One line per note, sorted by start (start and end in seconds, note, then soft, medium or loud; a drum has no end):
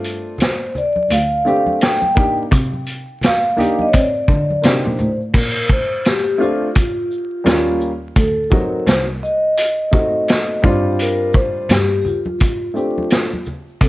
0.00 0.15 G2 medium
0.00 0.48 A3 medium
0.00 0.49 C4 medium
0.00 0.49 D4 medium
0.00 0.49 F4 medium
0.00 shaker medium
0.04 closed hi-hat soft
0.04 shaker soft
0.26 shaker soft
0.38 snare loud
0.38 closed hi-hat medium
0.38 low conga medium
0.38 shaker medium
0.42 0.77 C5 medium
0.62 shaker soft
0.75 low conga medium
0.75 shaker soft
0.77 1.09 D5 medium
0.77 shaker medium
0.96 high conga medium
0.96 shaker soft
1.08 1.41 D2 medium
1.08 1.78 F5 medium
1.08 closed hi-hat medium
1.08 high conga soft
1.08 shaker soft
1.33 shaker soft
1.45 1.98 A3 medium
1.45 1.99 C4 medium
1.45 1.99 D4 medium
1.45 1.99 G4 medium
1.45 shaker soft
1.66 high conga medium
1.66 shaker soft
1.79 2.35 G5 loud
1.79 snare loud
1.79 closed hi-hat medium
1.79 shaker medium
2.02 high conga medium
2.02 shaker soft
2.15 2.43 A#3 medium
2.15 2.43 D4 medium
2.15 2.44 D#4 medium
2.15 2.44 G4 medium
2.15 kick loud
2.15 low conga medium
2.15 shaker soft
2.15 shaker medium
2.37 shaker soft
2.51 3.02 C3 loud
2.51 kick loud
2.51 closed hi-hat medium
2.51 shaker medium
2.72 high conga soft
2.72 shaker soft
2.86 closed hi-hat soft
2.86 shaker medium
2.86 shaker soft
3.08 shaker soft
3.21 3.83 F5 loud
3.21 snare loud
3.21 closed hi-hat medium
3.21 low conga medium
3.21 shaker medium
3.44 shaker soft
3.56 3.84 A#3 medium
3.56 3.85 D4 medium
3.56 3.85 D#4 medium
3.56 3.85 G4 medium
3.56 closed hi-hat soft
3.56 low conga medium
3.56 shaker soft
3.60 shaker soft
3.79 3.88 D#5 medium
3.79 high conga medium
3.79 shaker soft
3.89 3.93 C#5 medium
3.89 high conga soft
3.89 shaker soft
3.93 4.24 C4 loud
3.93 4.67 D5 medium
3.93 kick loud
3.93 closed hi-hat medium
4.16 shaker soft
4.28 4.59 D3 medium
4.28 kick medium
4.28 shaker soft
4.50 high conga medium
4.50 shaker soft
4.62 4.83 C3 medium
4.62 5.07 A#3 medium
4.62 5.08 D4 medium
4.62 5.08 D#4 medium
4.62 5.08 G4 medium
4.62 5.18 C5 medium
4.62 snare loud
4.62 closed hi-hat medium
4.62 shaker medium
4.86 4.97 A#2 medium
4.86 high conga medium
4.86 shaker soft
4.98 5.30 A2 medium
4.98 low conga medium
4.98 shaker medium
5.00 shaker soft
5.21 shaker soft
5.34 5.84 A#2 loud
5.34 5.67 A#4 medium
5.34 kick loud
5.34 crash medium
5.69 6.07 C5 medium
5.69 kick medium
5.69 shaker soft
6.05 6.42 G4 medium
6.05 snare loud
6.05 closed hi-hat medium
6.38 6.66 A3 medium
6.38 6.67 C4 medium
6.38 6.67 D4 medium
6.38 6.67 F4 medium
6.38 shaker medium
6.42 7.78 F4 medium
6.75 kick loud
6.75 closed hi-hat medium
7.11 shaker soft
7.44 8.07 D#2 medium
7.44 7.89 G3 medium
7.44 7.89 A#3 medium
7.44 7.90 C#4 medium
7.44 7.90 F4 medium
7.44 snare loud
7.44 closed hi-hat medium
7.81 shaker medium
8.16 8.66 D2 medium
8.16 8.53 A4 medium
8.16 kick loud
8.16 closed hi-hat medium
8.50 9.04 F#3 medium
8.50 9.04 C4 medium
8.50 9.05 D#4 medium
8.50 9.05 F#4 medium
8.50 8.85 A#4 medium
8.50 kick medium
8.50 shaker soft
8.87 9.18 C2 medium
8.87 9.03 C5 medium
8.87 snare loud
8.87 closed hi-hat medium
9.23 10.60 D#5 medium
9.23 shaker soft
9.57 closed hi-hat medium
9.91 10.63 A3 medium
9.91 10.62 C4 medium
9.91 10.63 D#4 medium
9.91 10.64 F#4 medium
9.91 kick medium
9.91 shaker soft
10.28 snare loud
10.28 closed hi-hat medium
10.62 11.44 G2 loud
10.62 11.78 G3 medium
10.62 11.78 C4 medium
10.62 11.78 D4 medium
10.62 11.79 F4 loud
10.62 kick loud
10.62 shaker medium
10.99 11.37 A#4 loud
10.99 closed hi-hat medium
10.99 shaker medium
11.21 shaker soft
11.33 11.71 C5 loud
11.33 kick medium
11.33 shaker soft
11.33 shaker medium
11.57 shaker soft
11.69 12.00 G2 medium
11.69 12.01 G4 medium
11.69 snare loud
11.69 closed hi-hat medium
11.69 low conga medium
11.69 shaker medium
11.92 shaker soft
12.02 12.06 G4 medium
12.02 low conga medium
12.02 shaker soft
12.06 13.43 F4 medium
12.06 shaker soft
12.26 high conga medium
12.26 shaker soft
12.39 kick loud
12.39 closed hi-hat medium
12.39 high conga soft
12.39 shaker soft
12.63 shaker soft
12.74 13.27 A3 medium
12.74 13.28 C4 medium
12.74 13.28 D4 medium
12.74 13.29 G4 medium
12.74 shaker soft
12.98 high conga medium
12.98 shaker soft
13.10 snare loud
13.10 closed hi-hat medium
13.10 shaker medium
13.33 high conga medium
13.33 shaker soft
13.46 low conga medium
13.46 shaker medium
13.46 shaker soft
13.68 shaker soft
13.81 13.89 C3 loud
13.81 13.89 A4 medium
13.81 kick loud
13.81 closed hi-hat medium
13.81 shaker medium